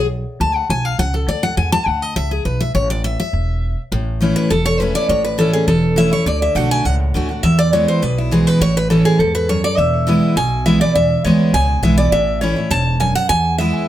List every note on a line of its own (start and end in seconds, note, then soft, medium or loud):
0.00 0.22 B1 medium
0.40 0.61 D2 medium
0.40 0.56 A5 medium
0.56 0.69 F#5 loud
0.70 0.95 B1 medium
0.70 0.85 G#5 loud
0.85 0.99 F5 loud
0.99 1.24 C#2 medium
0.99 1.14 F#5 loud
1.14 1.28 A4 medium
1.28 1.53 D2 medium
1.28 1.43 D5 medium
1.43 1.57 F#5 loud
1.57 1.78 E2 loud
1.57 1.72 G#5 medium
1.72 1.87 A5 loud
1.86 2.12 D2 medium
1.86 2.02 F#5 medium
2.02 2.16 D#5 medium
2.16 2.41 C#2 medium
2.16 2.31 E5 loud
2.31 2.45 G#4 medium
2.45 2.70 B1 medium
2.45 2.60 B4 medium
2.61 2.74 E5 loud
2.75 3.16 A1 loud
2.75 2.89 C#5 medium
2.90 3.04 D5 medium
3.04 3.18 E5 medium
3.20 3.81 E5 loud
3.33 3.74 E1 medium
3.92 4.33 A1 loud
3.92 4.48 A2 medium
4.21 4.49 E3 medium
4.21 4.49 A3 medium
4.21 4.50 C#4 medium
4.21 4.50 E4 medium
4.36 4.50 B4 medium
4.50 4.91 E1 medium
4.50 5.07 E2 loud
4.50 4.65 A4 medium
4.66 4.80 C#5 loud
4.80 5.08 E3 medium
4.80 5.08 A3 medium
4.80 5.09 C#4 medium
4.80 5.09 E4 loud
4.80 4.95 B4 medium
4.95 5.09 D5 loud
5.09 5.50 A1 medium
5.09 5.65 A2 medium
5.09 5.24 C#5 medium
5.25 5.38 B4 medium
5.38 5.53 E3 medium
5.38 5.53 A3 medium
5.38 5.54 C#4 medium
5.38 5.52 E4 medium
5.38 5.53 A4 medium
5.53 5.68 C#4 medium
5.53 5.67 E4 medium
5.53 5.67 G#4 medium
5.67 6.08 E1 medium
5.67 6.24 E2 loud
5.67 5.95 A4 medium
5.96 6.11 E3 medium
5.96 6.12 A3 medium
5.96 6.12 C#4 medium
5.96 6.10 E4 loud
5.96 6.12 E5 loud
6.11 6.27 C#4 soft
6.11 6.25 E4 medium
6.11 6.26 C#5 loud
6.26 6.47 D2 medium
6.26 6.54 D3 medium
6.26 6.42 D5 medium
6.42 6.56 E5 medium
6.55 6.80 B1 medium
6.55 6.83 D3 medium
6.55 6.84 A3 loud
6.55 6.84 D4 loud
6.55 6.85 F#4 loud
6.55 6.70 F#5 loud
6.71 6.86 G#5 loud
6.85 7.10 C#2 medium
6.85 7.41 A2 loud
6.85 6.95 F#5 medium
7.14 7.39 D2 medium
7.14 7.29 D3 medium
7.14 7.29 A3 medium
7.14 7.30 D4 medium
7.14 7.28 F#4 loud
7.29 7.44 D4 medium
7.29 7.43 F#4 medium
7.43 7.84 E2 medium
7.43 8.00 E2 medium
7.43 7.58 E5 loud
7.59 7.72 D5 loud
7.73 8.01 E3 medium
7.73 8.01 G#3 medium
7.73 8.02 B3 loud
7.73 8.02 E4 medium
7.73 7.88 C#5 medium
7.88 8.02 C5 loud
8.02 8.43 B1 medium
8.02 8.58 B2 loud
8.02 8.17 B4 medium
8.18 8.32 E4 medium
8.31 8.59 E3 medium
8.31 8.60 G#3 medium
8.31 8.60 B3 medium
8.31 8.61 E4 medium
8.31 8.47 G#4 medium
8.47 8.61 B4 loud
8.61 9.02 A1 medium
8.61 9.17 A2 medium
8.61 8.76 C#5 loud
8.77 8.90 B4 loud
8.90 9.18 E3 medium
8.90 9.18 A3 medium
8.90 9.19 C#4 medium
8.90 9.19 E4 loud
8.90 9.05 A4 medium
9.05 9.20 G#4 loud
9.19 9.60 E2 medium
9.19 9.48 G#2 medium
9.19 9.34 A4 medium
9.35 9.48 B4 loud
9.49 9.77 F#2 medium
9.49 9.64 C#5 medium
9.64 9.78 D5 loud
9.78 10.19 E1 medium
9.78 10.34 E2 medium
9.78 10.36 E5 medium
10.07 10.35 E3 medium
10.07 10.35 G#3 medium
10.07 10.36 B3 medium
10.07 10.36 E4 medium
10.36 10.77 B1 medium
10.36 10.93 B2 loud
10.36 10.64 G#5 loud
10.66 10.80 E3 medium
10.66 10.81 G#3 medium
10.66 10.81 B3 medium
10.66 10.80 E4 loud
10.66 10.81 E5 medium
10.81 10.96 B3 medium
10.81 10.95 E4 medium
10.81 10.95 D5 loud
10.95 11.16 E1 medium
10.95 11.51 E2 medium
10.95 11.23 E5 loud
11.24 11.49 D2 medium
11.24 11.53 E3 medium
11.24 11.53 G#3 loud
11.24 11.53 B3 loud
11.24 11.54 E4 loud
11.24 11.66 C#5 medium
11.54 11.79 C#2 medium
11.54 12.10 B2 loud
11.54 11.81 G#5 loud
11.83 12.08 B1 medium
11.83 11.97 E3 loud
11.83 11.98 G#3 medium
11.83 11.98 B3 medium
11.83 11.96 E4 loud
11.83 11.97 E5 medium
11.97 12.13 B3 medium
11.97 12.11 E4 medium
11.97 12.12 D5 loud
12.12 12.53 A1 medium
12.12 12.68 A2 loud
12.12 12.40 E5 loud
12.41 12.56 E3 medium
12.41 12.56 A3 medium
12.41 12.57 C#4 medium
12.41 12.55 E4 loud
12.41 12.83 C#5 medium
12.56 12.71 C#4 medium
12.56 12.70 E4 medium
12.71 13.12 E1 medium
12.71 12.99 G#2 loud
12.71 12.98 A5 loud
13.00 13.28 F#2 medium
13.00 13.15 G#5 medium
13.15 13.29 F#5 loud
13.29 13.70 E2 loud
13.29 13.86 E2 medium
13.29 13.57 G#5 loud
13.58 13.87 E3 medium
13.58 13.87 G#3 medium
13.58 13.87 B3 medium
13.58 13.88 E4 loud
13.58 13.88 E5 medium